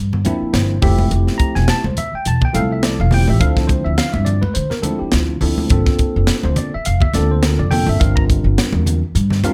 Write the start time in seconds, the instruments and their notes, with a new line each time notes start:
Already playing: upright bass G2
0.13 low conga
0.25 tine electric piano F3 A#3 C4 D4 E4, closed hi-hat, high conga
0.41 muted upright bass stroke
0.53 upright bass G1, tine electric piano C5, snare, closed hi-hat
0.82 upright bass F1, tine electric piano F3 A3 C4 E4 G4 E5, kick, open hi-hat, low conga
0.98 high conga
1.11 upright bass F1, closed hi-hat
1.27 snare
1.38 tine electric piano A#5, muted upright bass stroke, kick, closed hi-hat
1.55 upright bass E1, tine electric piano G#5, snare
1.68 tine electric piano A5, snare, closed hi-hat
1.84 upright bass C2, tine electric piano C5, high conga
1.97 tine electric piano E5, closed hi-hat, low conga
2.13 tine electric piano G5, muted upright bass stroke
2.25 upright bass E1, tine electric piano A5, closed hi-hat
2.41 tine electric piano G5, kick, low conga
2.53 upright bass C2, tine electric piano F3 A3 C4 E4 A4 F5, closed hi-hat, high conga
2.72 tine electric piano E5
2.83 tine electric piano D5, snare, closed hi-hat
3.00 upright bass E1, tine electric piano F5
3.11 tine electric piano F3 A3 C4 E4 G4 G5, open hi-hat, low conga
3.27 upright bass A1, tine electric piano E5, high conga
3.40 upright bass D2, tine electric piano F3 C4 D4 E4 A4 F5, kick, closed hi-hat
3.57 tine electric piano A4, kick, snare
3.67 tine electric piano C5, kick, closed hi-hat, high conga
3.84 upright bass D2, tine electric piano E5
3.98 tine electric piano F5, snare, closed hi-hat
4.13 upright bass G2, tine electric piano E5, high conga
4.25 tine electric piano D5, closed hi-hat, low conga
4.41 tine electric piano B4, high conga
4.54 upright bass D3, tine electric piano C5, closed hi-hat
4.70 tine electric piano A#4, snare, low conga
4.82 tine electric piano F3 C4 D4 E4 A4, closed hi-hat, high conga
4.99 tine electric piano G4, muted upright bass stroke
5.12 upright bass D2, tine electric piano F4, snare, closed hi-hat
5.41 upright bass D2, tine electric piano F3 C4 D4 E4 A4, open hi-hat, low conga
5.58 high conga
5.69 upright bass G1, tine electric piano A#3 C4 D4 F4 A4, kick, closed hi-hat
5.86 kick, snare
5.99 muted upright bass stroke, kick, closed hi-hat
6.16 upright bass F1
6.27 snare, closed hi-hat
6.43 upright bass D2, tine electric piano C5, high conga
6.56 tine electric piano D5, closed hi-hat, low conga
6.74 tine electric piano E5, muted upright bass stroke
6.85 upright bass F1, tine electric piano F5, closed hi-hat
7.00 tine electric piano E5, kick, low conga
7.13 upright bass D2, tine electric piano A#3 C4 D4 F4 A4 D5, snare, closed hi-hat, high conga
7.31 tine electric piano C5
7.43 tine electric piano A#4, snare, closed hi-hat
7.59 upright bass F1, tine electric piano D5
7.71 tine electric piano A#3 C4 D4 F4 A4 G5, open hi-hat, low conga
7.87 upright bass G1, tine electric piano E5, high conga
8.00 upright bass G1, tine electric piano G3 C4 D4 F4 A#4 F5, kick, closed hi-hat
8.16 tine electric piano A#5, kick
8.30 kick, closed hi-hat
8.44 upright bass G1
8.58 snare, closed hi-hat
8.72 upright bass E2, high conga
8.86 closed hi-hat, low conga
9.15 upright bass G2, closed hi-hat
9.30 snare, low conga
9.44 tine electric piano G3 C4 D4 F4 A#4 F5, closed hi-hat, high conga